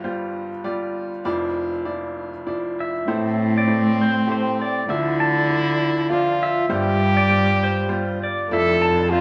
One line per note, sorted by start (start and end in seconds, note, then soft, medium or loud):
0.00 1.20 G1 soft
0.00 1.20 G2 medium
0.00 0.04 G3 medium
0.00 0.04 F4 medium
0.00 0.04 C5 medium
0.00 0.49 C5 medium
0.04 0.49 G3 medium
0.04 0.49 F4 medium
0.64 1.09 G3 medium
0.64 1.09 F4 medium
0.64 1.09 D5 medium
1.25 3.03 F1 medium
1.25 3.04 F2 medium
1.25 1.70 F3 medium
1.25 1.70 E4 medium
1.25 1.70 D5 medium
1.85 2.30 F3 medium
1.85 2.30 E4 soft
1.85 2.30 D5 medium
2.47 2.92 F3 medium
2.47 2.92 E4 medium
2.47 2.92 D5 medium
2.80 3.51 E5 medium
3.07 4.85 A1 soft
3.07 4.85 A2 medium
3.07 4.52 A2 medium
3.07 3.53 A3 medium
3.07 4.85 C4 medium
3.07 3.53 E4 medium
3.07 3.53 C5 medium
3.58 4.02 D5 medium
3.68 4.13 A3 soft
3.68 4.13 E4 soft
3.68 4.13 C5 soft
4.01 4.31 C5 medium
4.27 4.73 A3 medium
4.27 4.73 E4 soft
4.27 4.73 G4 medium
4.32 4.61 C5 medium
4.62 4.91 D5 medium
4.87 6.65 D2 medium
4.87 6.32 D3 medium
4.87 6.66 D3 soft
4.87 5.34 F3 medium
4.87 6.11 E4 medium
4.87 5.33 E4 medium
4.87 5.34 D5 medium
4.87 5.21 E5 medium
5.20 6.36 A5 medium
5.49 5.94 F3 soft
5.49 5.94 E4 medium
5.49 5.93 D5 medium
6.10 6.54 F3 medium
6.10 6.70 F4 medium
6.10 6.54 D5 medium
6.10 6.55 E5 medium
6.43 7.16 E5 medium
6.69 8.47 G1 medium
6.69 8.14 G2 medium
6.69 8.47 G2 medium
6.69 7.14 G3 medium
6.69 7.14 F4 medium
6.69 8.20 G4 loud
6.69 7.14 C5 medium
7.17 7.58 D5 medium
7.29 7.74 G3 medium
7.29 7.74 F4 soft
7.29 7.74 C5 medium
7.64 8.18 C5 medium
7.89 8.34 G3 medium
7.89 8.34 F4 medium
7.89 8.34 C5 medium
8.23 8.53 D5 medium
8.49 9.21 F1 soft
8.49 9.21 F2 medium
8.49 9.21 F2 soft
8.49 8.96 F3 medium
8.49 8.96 E4 medium
8.49 9.12 A4 loud
8.49 8.96 D5 medium
8.53 8.83 E5 medium
8.82 9.21 A5 medium
9.11 9.21 F3 soft
9.11 9.21 F4 medium
9.11 9.21 C5 medium
9.11 9.21 E5 soft